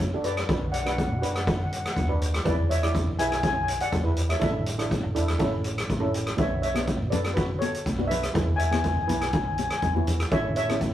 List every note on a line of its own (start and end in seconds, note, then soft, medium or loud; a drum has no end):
0.00 0.39 F#2 medium
0.00 0.20 A4 medium
0.00 0.25 C#5 loud
0.00 kick medium
0.00 closed hi-hat medium
0.14 0.35 D4 medium
0.14 0.35 F#4 medium
0.14 0.35 A4 medium
0.24 0.70 B4 medium
0.24 0.70 D5 medium
0.24 closed hi-hat medium
0.37 cross-stick medium
0.37 closed hi-hat medium
0.49 1.11 B1 loud
0.49 0.71 D4 medium
0.49 0.72 F#4 medium
0.49 0.71 B4 medium
0.49 kick loud
0.49 closed hi-hat medium
0.72 0.80 D5 medium
0.72 0.80 F#5 medium
0.72 closed hi-hat medium
0.82 0.88 F#5 medium
0.86 1.08 D4 medium
0.86 1.08 F#4 medium
0.86 1.08 B4 medium
0.86 0.96 F#5 medium
0.86 cross-stick medium
0.86 closed hi-hat medium
0.97 1.02 F#5 medium
0.97 kick medium
0.97 closed hi-hat medium
1.04 1.11 F#5 medium
1.10 1.20 B2 medium
1.10 1.18 F#5 medium
1.19 1.82 F#2 medium
1.19 1.74 D4 medium
1.19 1.74 F#4 medium
1.19 1.74 B4 medium
1.19 1.25 F#5 medium
1.23 1.33 F#5 medium
1.23 closed hi-hat medium
1.34 1.40 F#5 medium
1.34 cross-stick medium
1.34 closed hi-hat medium
1.42 1.48 F#5 medium
1.47 1.54 F#5 medium
1.47 kick loud
1.47 closed hi-hat medium
1.55 1.62 F#5 medium
1.63 1.69 F#5 medium
1.70 1.76 F#5 medium
1.70 closed hi-hat medium
1.77 1.84 F#5 medium
1.85 1.91 F#5 medium
1.85 cross-stick medium
1.85 closed hi-hat medium
1.92 1.99 F#5 medium
1.96 2.36 D#2 loud
1.96 kick medium
1.96 closed hi-hat medium
2.00 2.07 F#5 medium
2.09 2.31 D4 medium
2.09 2.31 F#4 medium
2.09 2.31 B4 medium
2.22 closed hi-hat medium
2.34 cross-stick loud
2.34 closed hi-hat medium
2.45 3.08 E2 loud
2.45 2.68 E4 medium
2.45 2.68 G#4 medium
2.45 2.67 B4 medium
2.45 2.68 B4 medium
2.45 2.71 D5 loud
2.45 kick loud
2.45 closed hi-hat medium
2.69 3.15 C#5 medium
2.69 3.18 E5 loud
2.69 closed hi-hat medium
2.83 3.05 E4 medium
2.83 3.05 G#4 medium
2.83 3.05 D5 medium
2.83 cross-stick medium
2.83 closed hi-hat medium
2.95 kick medium
2.95 closed hi-hat medium
3.07 3.17 E3 loud
3.18 3.78 B1 medium
3.18 3.71 E4 medium
3.18 3.71 G#4 medium
3.18 3.71 B4 medium
3.18 3.26 E5 medium
3.18 3.26 G#5 loud
3.18 closed hi-hat medium
3.28 3.33 G#5 medium
3.28 cross-stick medium
3.28 closed hi-hat medium
3.34 3.40 G#5 medium
3.41 3.46 G#5 medium
3.41 kick loud
3.41 closed hi-hat medium
3.47 3.54 G#5 medium
3.56 3.62 G#5 medium
3.63 3.70 G#5 medium
3.68 closed hi-hat medium
3.80 4.27 D5 medium
3.80 4.27 F#5 loud
3.80 closed hi-hat medium
3.92 4.32 E2 loud
3.92 kick medium
3.92 closed hi-hat medium
4.04 4.27 E4 medium
4.04 4.27 G#4 medium
4.04 4.27 B4 medium
4.17 closed hi-hat medium
4.29 4.35 C#5 medium
4.29 4.35 E5 medium
4.29 cross-stick medium
4.29 closed hi-hat medium
4.40 5.03 A1 loud
4.40 4.63 D4 medium
4.40 4.63 E4 medium
4.40 4.63 A4 medium
4.40 4.88 A4 medium
4.40 4.88 E5 medium
4.40 kick loud
4.40 closed hi-hat medium
4.66 closed hi-hat medium
4.78 5.01 D4 medium
4.78 5.01 E4 medium
4.78 5.01 A4 medium
4.78 cross-stick medium
4.78 closed hi-hat medium
4.91 kick medium
4.91 closed hi-hat medium
5.03 5.13 A2 loud
5.15 5.35 E2 medium
5.15 5.40 D4 medium
5.15 5.38 E4 medium
5.15 5.38 A4 loud
5.15 closed hi-hat medium
5.28 cross-stick medium
5.28 closed hi-hat medium
5.39 5.80 A1 loud
5.39 5.89 C#4 medium
5.39 5.89 E4 medium
5.39 5.89 A4 loud
5.39 kick loud
5.39 closed hi-hat medium
5.64 closed hi-hat medium
5.78 cross-stick medium
5.78 closed hi-hat medium
5.89 6.29 A1 medium
5.89 kick medium
5.89 closed hi-hat medium
6.00 6.23 C#4 medium
6.00 6.23 E4 medium
6.00 6.23 A4 medium
6.14 closed hi-hat medium
6.27 cross-stick medium
6.27 closed hi-hat medium
6.37 7.02 B1 loud
6.37 6.60 B3 medium
6.37 6.60 D4 medium
6.37 6.60 F#4 medium
6.37 6.61 C#5 medium
6.37 6.61 E5 medium
6.37 kick loud
6.37 closed hi-hat medium
6.62 7.09 C#5 medium
6.62 7.13 E5 loud
6.62 closed hi-hat medium
6.74 6.97 B3 medium
6.74 6.97 D4 medium
6.74 6.97 F#4 medium
6.74 cross-stick medium
6.74 closed hi-hat medium
6.74 high conga medium
6.87 kick medium
6.87 closed hi-hat medium
7.00 7.10 B2 loud
7.10 7.72 F#2 medium
7.10 7.64 B3 medium
7.10 7.64 D4 medium
7.10 7.64 A4 medium
7.10 7.33 B4 medium
7.10 7.37 D5 medium
7.10 closed hi-hat medium
7.10 high conga medium
7.10 low conga medium
7.24 cross-stick medium
7.24 closed hi-hat medium
7.34 7.47 F#4 medium
7.34 7.46 B4 medium
7.34 kick loud
7.34 closed hi-hat medium
7.59 8.07 A4 medium
7.59 8.11 C#5 medium
7.59 closed hi-hat medium
7.59 high conga medium
7.74 closed hi-hat medium
7.86 8.25 B1 medium
7.86 kick medium
7.86 closed hi-hat medium
7.98 8.20 B3 medium
7.98 8.21 D4 medium
7.98 8.21 F#4 medium
7.98 high conga medium
8.07 8.56 B4 medium
8.07 8.54 E5 loud
8.07 closed hi-hat medium
8.11 low conga medium
8.23 cross-stick medium
8.23 closed hi-hat medium
8.34 8.97 E2 loud
8.34 8.57 B3 medium
8.34 8.57 E4 medium
8.34 8.56 G#4 medium
8.34 kick loud
8.34 closed hi-hat medium
8.56 8.66 E5 medium
8.56 8.64 G#5 loud
8.56 closed hi-hat medium
8.65 8.70 G#5 medium
8.71 8.94 B3 medium
8.71 8.94 E4 medium
8.71 8.94 G#4 medium
8.71 8.77 G#5 medium
8.71 cross-stick medium
8.71 closed hi-hat medium
8.71 high conga medium
8.78 8.87 G#5 medium
8.84 kick medium
8.84 closed hi-hat medium
8.88 8.94 G#5 medium
8.95 9.06 E3 medium
8.95 9.02 G#5 medium
9.03 9.09 G#5 medium
9.07 9.68 B1 medium
9.07 9.60 B3 medium
9.07 9.60 E4 medium
9.07 9.60 B4 medium
9.07 9.18 G#5 medium
9.07 closed hi-hat medium
9.07 high conga medium
9.07 low conga medium
9.19 9.26 G#5 medium
9.19 cross-stick medium
9.19 closed hi-hat medium
9.33 9.39 G#5 medium
9.33 kick loud
9.33 closed hi-hat medium
9.40 9.46 G#5 medium
9.47 9.54 G#5 medium
9.55 9.62 G#5 medium
9.55 closed hi-hat medium
9.59 9.70 G#5 medium
9.59 high conga medium
9.70 9.77 G#5 medium
9.70 cross-stick medium
9.70 closed hi-hat medium
9.78 9.83 G#5 medium
9.78 closed hi-hat medium
9.82 10.22 E2 medium
9.82 9.92 G#5 medium
9.82 kick medium
9.95 10.17 B3 medium
9.95 10.17 E4 medium
9.95 10.17 F#4 medium
9.95 high conga medium
10.07 closed hi-hat medium
10.07 low conga medium
10.20 cross-stick medium
10.20 closed hi-hat medium
10.31 10.93 A1 loud
10.31 10.54 C#4 medium
10.31 10.54 E4 medium
10.31 10.54 A4 medium
10.31 10.54 C#5 medium
10.31 10.55 E5 loud
10.31 kick loud
10.31 closed hi-hat medium
10.56 10.94 C#5 medium
10.56 10.94 E5 loud
10.56 closed hi-hat medium
10.69 10.91 C#4 medium
10.69 10.91 E4 medium
10.69 10.91 A4 medium
10.69 cross-stick medium
10.69 closed hi-hat medium
10.69 high conga medium
10.81 kick medium
10.81 closed hi-hat medium